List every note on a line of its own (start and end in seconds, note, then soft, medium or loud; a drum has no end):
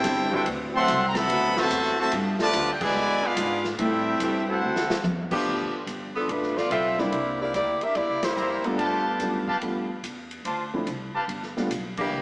0.00 0.31 C4 medium
0.00 0.31 E4 medium
0.00 0.32 E4 medium
0.00 0.30 G4 medium
0.00 0.32 A4 medium
0.00 0.32 C5 medium
0.00 0.32 G5 loud
0.00 hi-hat pedal medium
0.00 ride medium
0.04 0.45 G1 loud
0.04 snare soft
0.32 0.85 E3 loud
0.32 0.45 C4 medium
0.32 0.85 C4 medium
0.32 0.85 D4 loud
0.32 0.45 E4 medium
0.32 0.46 E4 medium
0.32 0.85 F#4 loud
0.32 0.45 G4 medium
0.32 0.46 A4 medium
0.32 0.46 C5 medium
0.32 0.46 G5 loud
0.32 kick medium
0.46 0.87 D2 medium
0.46 ride medium
0.74 1.04 F#3 loud
0.74 1.04 A3 loud
0.74 1.04 C4 loud
0.74 1.04 A4 loud
0.74 1.04 E5 loud
0.74 1.04 F#5 loud
0.74 1.04 C6 loud
0.88 1.28 C2 loud
0.88 hi-hat pedal medium
0.88 ride medium
1.07 1.15 A#5 medium
1.15 1.56 C3 loud
1.15 1.57 F#3 loud
1.15 1.57 B3 loud
1.15 1.57 A4 loud
1.15 1.57 E5 loud
1.15 1.57 F#5 loud
1.15 1.57 B5 loud
1.15 snare medium
1.15 ride medium
1.28 1.69 D2 loud
1.28 1.93 E3 loud
1.28 1.93 C4 medium
1.28 1.93 D4 medium
1.28 1.93 F#4 loud
1.28 ride medium
1.57 1.98 C3 medium
1.57 1.98 F#3 loud
1.57 1.98 A3 loud
1.57 1.99 F#4 loud
1.57 1.99 C5 medium
1.57 1.99 E5 medium
1.57 1.99 A5 loud
1.57 snare medium
1.71 2.11 E2 loud
1.71 hi-hat pedal medium
1.71 ride medium
1.99 2.12 C3 medium
1.99 2.12 F#3 medium
1.99 2.12 A3 medium
1.99 2.12 F#4 medium
1.99 2.12 C5 medium
1.99 2.12 E5 medium
1.99 2.12 A5 loud
2.12 2.38 G2 loud
2.12 2.76 F3 loud
2.12 2.76 A3 medium
2.12 2.76 B3 medium
2.12 2.76 G4 loud
2.12 ride medium
2.39 2.70 D3 loud
2.39 2.70 F3 medium
2.39 2.70 A3 loud
2.39 2.71 F4 medium
2.39 2.71 B4 medium
2.39 2.71 D5 loud
2.39 2.71 A5 loud
2.39 muted upright bass stroke soft
2.39 snare medium
2.53 2.95 D2 loud
2.53 hi-hat pedal medium
2.53 ride medium
2.73 2.82 G5 medium
2.81 3.23 B2 loud
2.81 3.24 D3 medium
2.81 2.91 E3 medium
2.81 3.24 G#3 medium
2.81 2.91 B3 medium
2.81 2.91 D4 medium
2.81 3.24 E4 loud
2.81 2.91 G#4 loud
2.81 3.24 B4 medium
2.81 3.24 D5 loud
2.81 3.24 G#5 loud
2.81 kick medium
2.81 crash medium
2.96 3.36 E2 medium
3.25 3.66 B3 medium
3.25 3.66 D4 medium
3.25 3.66 F4 medium
3.25 3.65 G#4 medium
3.25 3.65 B4 medium
3.25 3.66 F5 loud
3.36 3.77 G#2 loud
3.36 hi-hat pedal medium
3.36 ride medium
3.64 snare soft
3.78 4.19 A2 loud
3.78 4.44 G3 medium
3.78 4.44 C4 medium
3.78 4.44 E4 medium
3.78 4.44 G4 medium
3.78 4.44 A4 medium
3.78 4.44 E5 medium
3.78 ride medium
4.20 4.61 G2 medium
4.20 4.40 E3 medium
4.20 4.40 A3 medium
4.20 4.40 C4 medium
4.20 4.40 G4 loud
4.20 hi-hat pedal medium
4.20 ride medium
4.48 5.00 A3 medium
4.48 5.00 C4 medium
4.48 5.01 E4 medium
4.48 5.00 F#4 medium
4.48 5.01 A4 medium
4.48 5.01 C5 medium
4.48 5.01 F#5 medium
4.62 4.88 D2 medium
4.76 snare medium
4.90 muted upright bass stroke soft
4.90 snare medium
5.04 5.44 E2 loud
5.04 hi-hat pedal medium
5.04 high tom medium
5.31 5.84 F3 loud
5.31 5.84 F3 medium
5.31 5.84 A3 loud
5.31 5.84 B3 loud
5.31 5.84 B3 medium
5.31 5.84 D4 medium
5.31 5.84 G4 loud
5.31 kick loud
5.31 crash loud
5.45 5.70 D2 medium
5.73 muted upright bass stroke soft
5.86 6.27 G1 medium
5.86 hi-hat pedal medium
5.86 ride medium
6.16 6.29 F3 medium
6.16 6.29 B3 medium
6.16 6.28 D4 medium
6.16 6.29 A4 medium
6.28 6.69 A1 medium
6.28 6.57 A3 medium
6.28 6.57 D4 medium
6.28 6.57 F4 medium
6.28 6.57 B4 medium
6.28 ride medium
6.43 snare soft
6.57 6.71 B3 medium
6.57 6.71 F4 medium
6.57 6.71 A4 medium
6.57 6.71 D5 loud
6.57 snare soft
6.70 7.11 B1 medium
6.70 6.97 C4 medium
6.70 6.89 F4 medium
6.70 6.97 F4 medium
6.70 6.89 A4 medium
6.70 6.97 A4 medium
6.70 6.89 B4 medium
6.70 6.96 E5 loud
6.70 6.89 G5 medium
6.70 hi-hat pedal soft
6.70 ride medium
6.98 7.51 G3 medium
6.98 7.51 A#3 medium
6.98 7.40 A#3 medium
6.98 7.51 C4 medium
6.98 7.52 D4 medium
6.98 7.40 E4 medium
6.98 7.52 E4 medium
6.98 7.40 G4 medium
6.98 7.40 D5 loud
6.98 snare soft
7.11 7.52 C2 medium
7.11 ride medium
7.41 7.54 A#3 medium
7.41 7.54 E4 medium
7.41 7.54 G4 medium
7.41 7.54 D5 medium
7.54 7.79 D2 loud
7.54 7.80 A#3 medium
7.54 7.80 E4 medium
7.54 7.80 G4 medium
7.54 7.80 D5 loud
7.54 hi-hat pedal medium
7.54 ride medium
7.81 7.96 D4 medium
7.81 7.95 G4 medium
7.81 7.96 A#4 medium
7.81 7.96 E5 loud
7.81 muted upright bass stroke soft
7.81 ride soft
7.95 8.11 E2 medium
7.95 8.22 A#3 medium
7.95 8.22 E4 medium
7.95 8.22 G4 medium
7.95 8.23 D5 medium
7.95 ride medium
8.09 8.23 C2 medium
8.23 8.36 A#1 medium
8.23 8.65 A#3 medium
8.23 8.65 E4 medium
8.23 8.65 G4 medium
8.23 8.65 C5 loud
8.23 snare medium
8.23 ride medium
8.37 8.62 F2 loud
8.37 8.56 E4 medium
8.37 8.56 C5 medium
8.37 8.56 D5 medium
8.37 8.56 A#5 medium
8.37 hi-hat pedal medium
8.64 9.06 F3 medium
8.64 9.18 G3 medium
8.64 9.18 A3 medium
8.64 9.06 B3 medium
8.64 9.18 B3 medium
8.64 9.07 D4 medium
8.64 9.18 D4 medium
8.64 9.18 F4 medium
8.64 9.06 A4 medium
8.64 muted upright bass stroke soft
8.64 ride soft
8.78 9.19 G2 medium
8.78 9.42 G4 loud
8.78 9.42 B4 medium
8.78 9.42 F5 medium
8.78 9.42 A5 loud
8.78 ride medium
9.20 9.61 F#2 medium
9.20 9.46 G3 medium
9.20 9.46 A3 medium
9.20 9.46 B3 soft
9.20 9.46 D4 soft
9.20 9.46 F4 medium
9.20 hi-hat pedal medium
9.20 ride medium
9.47 9.57 G4 medium
9.47 9.57 B4 medium
9.47 9.57 F5 medium
9.47 9.57 A5 loud
9.47 kick medium
9.61 10.02 F2 medium
9.61 9.87 G3 medium
9.61 9.87 A3 medium
9.61 9.87 B3 medium
9.61 9.88 D4 soft
9.61 9.88 F4 medium
9.61 ride medium
10.03 10.44 E2 medium
10.03 hi-hat pedal medium
10.03 ride medium
10.31 ride soft
10.45 10.86 D2 medium
10.45 10.64 F4 medium
10.45 10.64 C5 medium
10.45 10.64 D5 medium
10.45 10.64 A5 medium
10.45 ride medium
10.73 10.86 F3 medium
10.73 10.86 A3 medium
10.73 10.86 C4 medium
10.73 10.87 D4 medium
10.73 10.87 E4 medium
10.87 11.12 C2 medium
10.87 hi-hat pedal soft
10.87 ride medium
11.14 11.24 G4 medium
11.14 11.24 B4 medium
11.14 11.24 F5 medium
11.14 11.24 A5 loud
11.14 muted upright bass stroke soft
11.28 11.69 G1 medium
11.28 ride medium
11.43 snare soft
11.57 11.70 G3 medium
11.57 11.70 A3 medium
11.57 11.70 B3 medium
11.57 11.70 D4 medium
11.57 11.70 F4 medium
11.57 snare soft
11.70 12.11 B1 medium
11.70 hi-hat pedal medium
11.70 ride medium
11.97 12.22 E3 medium
11.97 12.22 A#3 medium
11.97 12.22 D4 medium
11.97 12.22 G4 medium
11.97 kick medium
11.97 crash medium
12.12 12.22 C2 medium